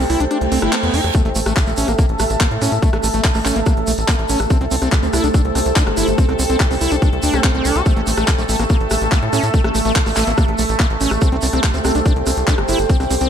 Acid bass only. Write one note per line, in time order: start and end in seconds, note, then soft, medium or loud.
0.10 0.20 E4 medium
0.20 0.25 D4 loud
0.31 0.38 D4 medium
0.52 0.59 C4 loud
0.62 0.72 E4 medium
0.73 0.77 B3 medium
0.83 0.95 B3 medium
0.94 1.01 E4 medium
1.15 1.22 A3 medium
1.25 1.29 A3 loud
1.36 1.40 A3 medium
1.46 1.53 A3 medium
1.67 1.71 A3 medium
1.78 1.88 C#4 medium
1.88 1.92 A#3 loud
1.99 2.06 A#3 medium
2.20 2.24 A3 medium
2.41 2.48 A#3 medium
2.62 2.71 C#4 medium
2.83 2.90 A3 medium
2.93 2.97 A3 loud
3.03 3.08 A3 medium
3.14 3.21 A3 medium
3.35 3.39 A3 medium
3.45 3.55 C#4 medium
3.56 3.60 A#3 loud
3.66 3.74 A#3 medium
3.87 3.92 A3 medium
4.08 4.16 A#3 medium
4.29 4.39 C#4 medium
4.50 4.58 C4 medium
4.61 4.65 C4 loud
4.71 4.76 C4 medium
4.82 4.89 C4 medium
5.03 5.07 C4 medium
5.13 5.23 E4 medium
5.24 5.28 D4 loud
5.34 5.41 D4 medium
5.55 5.60 C4 medium
5.76 5.83 D4 medium
5.97 6.07 E4 medium
6.18 6.25 C4 medium
6.29 6.33 C4 loud
6.39 6.43 C4 medium
6.50 6.57 C4 medium
6.71 6.75 C4 medium
6.81 6.91 E4 medium
6.92 6.96 D4 loud
7.02 7.09 D4 medium
7.23 7.35 D4 medium
7.34 7.41 C4 loud
7.44 7.51 C4 loud
7.55 7.67 C4 medium
7.65 7.77 D4 medium
7.76 7.83 G4 medium
7.86 7.93 A3 medium
7.96 8.01 A3 loud
8.07 8.11 A3 medium
8.17 8.25 A3 medium
8.38 8.43 A3 medium
8.49 8.56 A3 loud
8.59 8.64 A#3 loud
8.70 8.77 A#3 medium
8.91 8.95 A3 medium
9.12 9.19 A#3 medium
9.33 9.43 C#4 medium
9.54 9.61 A3 medium
9.64 9.69 A3 loud
9.75 9.79 A3 medium
9.85 9.93 A3 medium
10.06 10.11 A3 medium
10.17 10.24 A3 loud
10.27 10.32 A#3 loud
10.38 10.45 A#3 medium
10.59 10.63 A3 medium
10.80 10.87 A#3 medium
11.01 11.11 C#4 medium
11.22 11.29 C4 medium
11.32 11.36 C4 loud
11.43 11.47 C4 medium
11.53 11.60 C4 medium
11.74 11.78 C4 medium
11.85 11.92 C4 loud
11.95 11.99 D4 loud
12.06 12.13 D4 medium
12.27 12.31 C4 medium
12.48 12.55 D4 medium
12.69 12.79 E4 medium
12.90 12.97 C4 medium
13.00 13.04 C4 loud
13.10 13.15 C4 medium
13.21 13.28 C4 medium